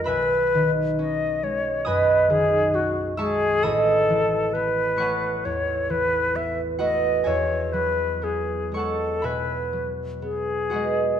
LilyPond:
<<
  \new Staff \with { instrumentName = "Harp" } { \time 4/4 \key e \major \tempo 4 = 66 <aes' b' ees'' e'' gis'' b''>2 <dis'' gis'' b'' dis'''>4. <e'' a'' cis''' e'''>8 | <dis'' gis'' b'' dis'''>4. <cis'' fis'' a'' cis'''>2 <fis' b' dis'' fis''>8 | <gis' cis'' e'' gis''>4. <cis'' fis'' a'' cis'''>8 <b' e'' gis'' b''>4. <fis' b' dis'' fis''>8 | }
  \new Staff \with { instrumentName = "Harp" } { \clef bass \time 4/4 \key e \major <b,, gis>8 dis8 cis'8 gis8 fis,8 dis8 cis'8 gis8 | a,,8 e8 b8 a8 e,8 e8 b8 a8 | e,8 fis8 b8 gis8 b,8 fis8 b8 gis8 | }
  \new Staff \with { instrumentName = "Flute" } { \time 4/4 \key e \major b'8 r8 dis''8 cis''8 b'8 gis'8 fis'8 gis'8 | a'4 b'4 cis''8 b'8 e''8 dis''8 | cis''8 b'8 gis'8 a'8 b'8 r8 gis'4 | }
>>